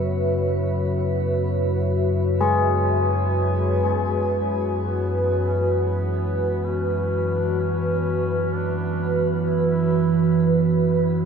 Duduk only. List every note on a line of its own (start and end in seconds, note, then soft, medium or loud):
4.78 5.50 B3 medium
5.49 5.73 C#4 medium
5.72 6.67 B3 medium
6.65 7.38 C#4 medium
7.36 7.61 D4 medium
7.59 8.54 C#4 loud
8.53 9.20 D4 medium
9.45 10.80 E4 loud